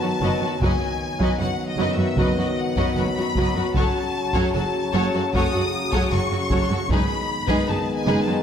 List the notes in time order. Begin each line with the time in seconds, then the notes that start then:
Already playing: D#3 F#3 B3 F#4 A5, impact
0.01 F#2 F#3 D#4 F#4
0.20 F#1 F#2 F#3 F#4 B4 D#5
0.41 F#2 F#3 F#4 B4
0.60 F#1 F#2 D#3 F#3 B3 F#4 B4 G#5, taiko
0.65 D#5
1.19 F#2 F#3 F#4 B4 D#5, taiko
1.39 F#1 F#2 F#3 F#4 B4 F#5
1.67 D#5
1.77 F#1 F#2 F#3 F#4 B4 D#5
1.92 E5
1.97 F#2 F#3 F#4 B4
2.16 F#1 F#2 F#3 F#4 B4 D#5, taiko
2.37 F#2 F#3 F#4 B4
2.58 F#5
2.76 F#2 F#3 F#4 B4 D#5, taiko
2.97 F#1 F#2 F#3 F#4 B4 B5
3.17 F#2 F#3 D#4 F#4
3.35 F#1 F#2 F#3 F#4 B4 D#5, taiko
3.55 F#2 F#3 F#4 B4
3.74 F#1 F#2 C#3 F#3 C#4 F#4 A4 C#5 A5, taiko
4.33 F#2 F#3 F#4 A4 C#5, taiko
4.53 F#1 F#2 F#3 F#4 A4 A5
4.93 F#1 F#2 F#3 F#4 A4 C#5
5.14 F#2 F#3 F#4 A4
5.33 F#1 F#2 F#3 F#4 A4 C#5 D#6, taiko
5.53 F#2 F#3 F#4 A4
5.92 F#2 F#3 F#4 A4 C#5, taiko
6.12 F#1 F#2 F#3 F#4 A4 C#6
6.31 F#2 F#3 C#4 F#4
6.50 F#1 F#2 F#3 F#4 A4 C#5, taiko
6.70 F#2 F#3 F#4 A4
6.89 F#1 F#2 D#3 G#3 B3 D#4 G#4 B4 B5, taiko
7.48 F#2 G#3 D#4 G#4 B4, taiko
7.68 F#1 F#2 G#3 D#4 G#4 A5
7.94 G#5
8.06 F#1 F#2 G#3 D#4 G#4 B4
8.20 A5
8.26 F#2 G#3 D#4 G#4